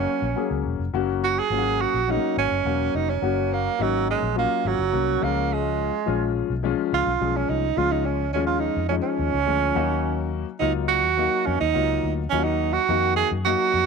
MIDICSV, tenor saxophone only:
0, 0, Header, 1, 2, 480
1, 0, Start_track
1, 0, Key_signature, 6, "major"
1, 0, Tempo, 569260
1, 792, Time_signature, 4, 2, 24, 8
1, 11688, End_track
2, 0, Start_track
2, 0, Title_t, "Tenor saxophone"
2, 0, Program_c, 0, 66
2, 0, Note_on_c, 0, 61, 87
2, 550, Note_off_c, 0, 61, 0
2, 1047, Note_on_c, 0, 66, 97
2, 1174, Note_on_c, 0, 68, 104
2, 1186, Note_off_c, 0, 66, 0
2, 1530, Note_on_c, 0, 66, 98
2, 1542, Note_off_c, 0, 68, 0
2, 1778, Note_on_c, 0, 63, 90
2, 1790, Note_off_c, 0, 66, 0
2, 2004, Note_off_c, 0, 63, 0
2, 2009, Note_on_c, 0, 61, 95
2, 2497, Note_on_c, 0, 63, 92
2, 2510, Note_off_c, 0, 61, 0
2, 2612, Note_on_c, 0, 61, 88
2, 2625, Note_off_c, 0, 63, 0
2, 2978, Note_on_c, 0, 58, 88
2, 2991, Note_off_c, 0, 61, 0
2, 3225, Note_on_c, 0, 54, 94
2, 3237, Note_off_c, 0, 58, 0
2, 3453, Note_off_c, 0, 54, 0
2, 3461, Note_on_c, 0, 56, 82
2, 3676, Note_off_c, 0, 56, 0
2, 3698, Note_on_c, 0, 58, 89
2, 3942, Note_on_c, 0, 54, 88
2, 3955, Note_off_c, 0, 58, 0
2, 4414, Note_on_c, 0, 58, 78
2, 4427, Note_off_c, 0, 54, 0
2, 4664, Note_on_c, 0, 56, 82
2, 4677, Note_off_c, 0, 58, 0
2, 5373, Note_off_c, 0, 56, 0
2, 5852, Note_on_c, 0, 65, 93
2, 6212, Note_on_c, 0, 61, 81
2, 6225, Note_off_c, 0, 65, 0
2, 6321, Note_on_c, 0, 63, 86
2, 6334, Note_off_c, 0, 61, 0
2, 6557, Note_on_c, 0, 65, 97
2, 6570, Note_off_c, 0, 63, 0
2, 6675, Note_on_c, 0, 63, 83
2, 6688, Note_off_c, 0, 65, 0
2, 6793, Note_on_c, 0, 61, 75
2, 6805, Note_off_c, 0, 63, 0
2, 7020, Note_off_c, 0, 61, 0
2, 7025, Note_on_c, 0, 61, 78
2, 7134, Note_off_c, 0, 61, 0
2, 7139, Note_on_c, 0, 65, 85
2, 7249, Note_on_c, 0, 63, 83
2, 7262, Note_off_c, 0, 65, 0
2, 7489, Note_off_c, 0, 63, 0
2, 7494, Note_on_c, 0, 61, 79
2, 7553, Note_off_c, 0, 61, 0
2, 7611, Note_on_c, 0, 61, 99
2, 8787, Note_off_c, 0, 61, 0
2, 8932, Note_on_c, 0, 63, 91
2, 9045, Note_off_c, 0, 63, 0
2, 9177, Note_on_c, 0, 66, 101
2, 9663, Note_on_c, 0, 61, 88
2, 9676, Note_off_c, 0, 66, 0
2, 9781, Note_off_c, 0, 61, 0
2, 9786, Note_on_c, 0, 63, 103
2, 10233, Note_off_c, 0, 63, 0
2, 10371, Note_on_c, 0, 61, 92
2, 10490, Note_on_c, 0, 63, 92
2, 10502, Note_off_c, 0, 61, 0
2, 10733, Note_on_c, 0, 66, 110
2, 10745, Note_off_c, 0, 63, 0
2, 11093, Note_off_c, 0, 66, 0
2, 11099, Note_on_c, 0, 68, 98
2, 11214, Note_off_c, 0, 68, 0
2, 11341, Note_on_c, 0, 66, 104
2, 11688, Note_off_c, 0, 66, 0
2, 11688, End_track
0, 0, End_of_file